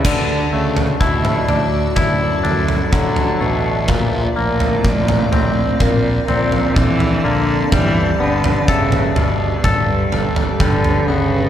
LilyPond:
<<
  \new Staff \with { instrumentName = "Ambient pad" } { \time 4/4 \key d \major \tempo 4 = 62 << { <e'' a''>1 | bes''2 a''2~ | a''2 g''2 | } \\ { <fis' d''>1 | <c' f''>1 | <g' b'>1 | } >> }
  \new Staff \with { instrumentName = "Vibraphone" } { \time 4/4 \key d \major d''4 e''8 d''4 a'8 a'8 b'8~ | b'8 bes'8 d''4 bes'8 d''4 a'8 | d''4 e''8 d''4 a'8 a'8 b'8 | }
  \new Staff \with { instrumentName = "Clean electric guitar" } { \time 4/4 \key d \major d8 a8 e'8 d'8 e'8 d'8 fis8 a8 | bes,8 bes4 c'4 c'8 d8 bes8 | g8 b8 a'4 a'4 g8 b8 | }
  \new Staff \with { instrumentName = "Cello" } { \clef bass \time 4/4 \key d \major d8 cis8 b,8 a,8 fis,4 d8 b,8 | bes,8 a,4. bes,8 bes,8 e8 d8 | e8 d8 cis8 b,8 g,4 d8 cis8 | }
  \new Staff \with { instrumentName = "Fingered electric bass" } { \clef bass \time 4/4 \key d \major d,8 d,8 d,8 d,8 d,8 d,8 d,8 a,,8 | bes,,8 bes,,8 bes,,8 bes,,8 bes,,8 bes,,8 bes,,8 bes,,8 | g,,8 g,,8 g,,8 g,,8 g,,8 g,,8 g,,8 g,,8 | }
  \new DrumStaff \with { instrumentName = "Drums" } \drummode { \time 4/4 <cymc bd tomfh>8. tomfh16 bd16 <tomfh toml>16 tomfh8 <bd tomfh toml>8 tomfh16 tomfh16 <bd tomfh>16 tomfh8. | <bd tomfh>8. tomfh16 bd16 <tomfh toml>16 tomfh8 <bd tomfh toml>8 tomfh16 tomfh16 <bd tomfh>16 tomfh8. | <bd tomfh>8. tomfh16 bd16 <tomfh toml>16 tomfh8 <bd tomfh toml>8 tomfh16 tomfh16 <bd tomfh>16 tomfh8. | }
>>